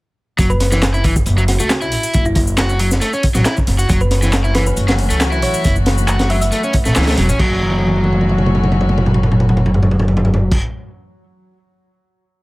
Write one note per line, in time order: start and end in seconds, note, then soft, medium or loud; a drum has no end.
0.39 1.23 F#1 loud
0.39 0.50 F#3 medium
0.39 kick loud
0.39 closed hi-hat medium
0.39 shaker medium
0.50 0.57 B4 medium
0.50 shaker soft
0.60 0.68 B4 medium
0.60 snare soft
0.60 closed hi-hat medium
0.60 open hi-hat medium
0.72 0.80 E3 medium
0.72 snare soft
0.72 shaker medium
0.82 snare loud
0.82 clap loud
0.82 closed hi-hat medium
0.82 shaker medium
0.94 1.03 E4 medium
0.94 shaker soft
1.04 1.14 E3 medium
1.04 kick medium
1.04 closed hi-hat medium
1.04 open hi-hat medium
1.16 kick loud
1.16 shaker medium
1.26 1.56 F#1 medium
1.26 closed hi-hat medium
1.26 shaker medium
1.38 1.43 F#3 loud
1.38 shaker soft
1.48 1.56 F#4 medium
1.48 snare soft
1.48 closed hi-hat medium
1.48 open hi-hat medium
1.60 1.92 C#2 medium
1.60 1.70 A3 medium
1.60 1.66 F#4 medium
1.60 shaker medium
1.70 snare loud
1.70 clap loud
1.70 closed hi-hat medium
1.70 shaker medium
1.81 2.24 E4 medium
1.81 shaker soft
1.92 2.01 A1 medium
1.92 closed hi-hat medium
1.92 open hi-hat medium
2.03 open hi-hat medium
2.03 shaker medium
2.13 2.98 F#1 loud
2.13 kick loud
2.13 closed hi-hat medium
2.13 shaker medium
2.25 2.32 E4 medium
2.25 shaker soft
2.35 2.43 E4 medium
2.35 kick loud
2.35 closed hi-hat medium
2.35 open hi-hat medium
2.47 shaker medium
2.57 2.79 F#4 loud
2.57 snare loud
2.57 clap loud
2.57 closed hi-hat medium
2.57 shaker medium
2.69 shaker soft
2.79 2.89 F#3 medium
2.79 closed hi-hat medium
2.79 open hi-hat medium
2.91 snare medium
2.91 shaker medium
3.01 3.11 A3 medium
3.01 closed hi-hat medium
3.01 shaker medium
3.13 3.23 C#4 medium
3.13 shaker soft
3.23 kick medium
3.23 closed hi-hat medium
3.23 open hi-hat medium
3.35 3.43 A1 loud
3.35 3.43 F#3 medium
3.35 snare soft
3.35 shaker medium
3.45 3.55 E4 medium
3.45 snare loud
3.45 clap loud
3.45 closed hi-hat medium
3.45 shaker medium
3.57 kick medium
3.57 shaker soft
3.67 3.85 F#1 loud
3.67 snare soft
3.67 closed hi-hat medium
3.67 open hi-hat medium
3.79 3.89 F#4 medium
3.79 closed hi-hat soft
3.79 shaker medium
3.89 4.73 F#1 loud
3.89 7.36 E3 medium
3.89 4.00 F#3 medium
3.89 7.36 F#3 medium
3.89 7.36 A3 medium
3.89 5.63 C#4 medium
3.89 7.36 F#4 medium
3.89 kick loud
3.89 closed hi-hat medium
3.89 shaker medium
4.01 4.07 B4 medium
4.01 shaker soft
4.11 4.19 B4 medium
4.11 snare soft
4.11 closed hi-hat medium
4.11 open hi-hat medium
4.22 4.31 E3 medium
4.22 snare soft
4.22 shaker medium
4.33 snare loud
4.33 clap loud
4.33 closed hi-hat loud
4.33 shaker medium
4.44 4.54 E4 medium
4.44 shaker soft
4.55 4.64 E3 medium
4.55 4.62 B4 medium
4.55 snare medium
4.55 closed hi-hat medium
4.55 open hi-hat medium
4.66 4.73 B4 medium
4.66 shaker medium
4.77 5.06 F#1 loud
4.77 closed hi-hat medium
4.77 shaker medium
4.88 4.93 F#3 loud
4.88 snare loud
4.88 closed hi-hat medium
4.88 shaker soft
4.99 open hi-hat medium
5.10 5.42 C#2 medium
5.10 5.20 A3 loud
5.10 closed hi-hat medium
5.10 shaker medium
5.20 snare loud
5.20 clap loud
5.20 closed hi-hat medium
5.20 shaker medium
5.32 5.75 E4 medium
5.32 shaker soft
5.42 5.51 A1 medium
5.42 5.86 C#5 medium
5.42 closed hi-hat medium
5.42 open hi-hat medium
5.54 open hi-hat soft
5.54 shaker medium
5.64 6.49 F#1 loud
5.64 7.38 B3 medium
5.64 kick loud
5.64 closed hi-hat medium
5.64 shaker medium
5.76 shaker soft
5.86 snare loud
5.86 closed hi-hat medium
5.86 open hi-hat medium
5.98 shaker medium
6.08 6.29 F#4 loud
6.08 clap loud
6.08 closed hi-hat medium
6.08 shaker medium
6.19 snare loud
6.19 closed hi-hat medium
6.19 shaker soft
6.30 6.39 F#3 medium
6.30 6.37 E5 medium
6.30 open hi-hat medium
6.41 6.48 E5 medium
6.41 closed hi-hat medium
6.41 shaker medium
6.52 6.61 A3 medium
6.52 closed hi-hat medium
6.52 shaker medium
6.63 6.73 C#4 medium
6.63 shaker soft
6.73 kick loud
6.73 closed hi-hat medium
6.73 open hi-hat medium
6.85 6.94 A1 medium
6.85 6.95 A3 medium
6.85 snare soft
6.85 shaker medium
6.96 7.13 C#2 medium
6.96 7.07 E3 medium
6.96 snare medium
6.96 clap loud
6.96 closed hi-hat medium
6.96 shaker medium
7.01 snare loud
7.01 closed hi-hat medium
7.07 7.12 A3 loud
7.07 snare medium
7.07 closed hi-hat medium
7.07 shaker soft
7.12 snare medium
7.12 closed hi-hat medium
7.17 7.27 E1 medium
7.17 7.27 F#3 loud
7.17 snare soft
7.17 closed hi-hat medium
7.17 open hi-hat medium
7.29 7.37 A1 loud
7.29 7.39 C#4 medium
7.29 closed hi-hat soft
7.29 shaker medium
7.39 10.56 F#1 medium
7.39 10.56 E3 medium
7.39 10.56 F#3 medium
7.39 10.56 A3 medium
7.39 10.56 C#4 medium
7.39 10.56 F#4 medium
7.39 kick loud
7.39 crash loud
7.61 high tom soft
7.70 high tom medium
7.79 high tom medium
7.87 high tom medium
7.96 high tom medium
8.04 high tom medium
8.13 high tom medium
8.21 high tom medium
8.29 high tom medium
8.38 mid tom medium
8.46 mid tom medium
8.55 mid tom medium
8.64 mid tom medium
8.72 mid tom medium
8.81 mid tom medium
8.89 mid tom medium
8.98 mid tom medium
9.06 mid tom medium
9.14 mid tom medium
9.23 mid tom medium
9.32 mid tom medium
9.40 mid tom medium
9.49 mid tom medium
9.57 mid tom medium
9.66 mid tom medium
9.74 floor tom medium
9.83 floor tom medium
9.91 floor tom medium
10.00 floor tom medium
10.08 floor tom medium
10.17 floor tom loud
10.25 floor tom loud
10.34 floor tom loud
10.51 kick loud
10.51 crash loud